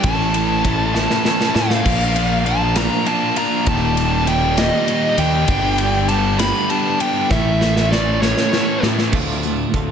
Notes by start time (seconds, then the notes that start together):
0.03 A1 A2 E3 A3 C#4 E4 A4 A5, kick, ride
0.33 A3 C#4 E4 A4, ride
0.64 A3 C#4 E4 A4, kick, ride
0.94 A2 E3 A3 C#4 E4 A4 A5, snare
1.10 snare
1.24 A2 E3 A3 C#4 E4 A4, snare
1.41 snare
1.54 A2 A3 C#4 E4 A4 F5, snare
1.70 snare
1.84 A#1 A#2 F3 A#3 D4 F4 A#4, kick, crash
2.14 A#3 D4 F4 A#4, ride
2.44 A#3 D4 F4 A#4 A5, ride
2.75 A#2 F3 A#3 D4 F4 A#4 A#5, snare, ride
3.06 A#2 F3 A#3 D4 F4 A#4 A5, ride
3.36 A#3 D4 F4 A#4 A#5, ride
3.66 D#1 D#2 A#2 D#3 G3 G4 A5, kick, ride
3.97 D#3 G3 G4, ride
4.27 A#2 D#3 G3 G4 G5, ride
4.57 D#2 A#2 D#3 G3 G4 D#5, snare, ride
4.87 D#2 A#2 D#3 G3 G4, ride
5.17 D#2 D#3 G3 G4 G5, ride
5.47 G1 G2 D3 G3 B3 D4 G4, kick, ride
5.78 G3 B3 D4 G4, ride
6.09 G3 B3 D4 G4 A5, ride
6.39 G2 D3 G3 B3 D4 G4 B5, snare, ride
6.70 G2 D3 G3 B3 D4 G4 A5, ride
7.00 G3 B3 D4 G4 G5, ride
7.31 A1 A2 E3 A3 C#4 E4 A4 E5, kick, snare
7.61 A3 C#4 E4 A4, snare
7.77 snare
7.92 A3 C#4 E4 A4 D5, snare
8.22 A2 E3 A3 C#4 E4 A4 C#5, snare
8.37 snare
8.52 A2 E3 A3 C#4 E4 A4, snare
8.83 A2 A3 C#4 E4 A4, snare
8.98 snare
9.12 D2 A2 D3 A3 F4, kick, crash
9.43 D2 A2 D3 A3 F4, closed hi-hat
9.73 D2 A2 D3 A3 F4, kick, closed hi-hat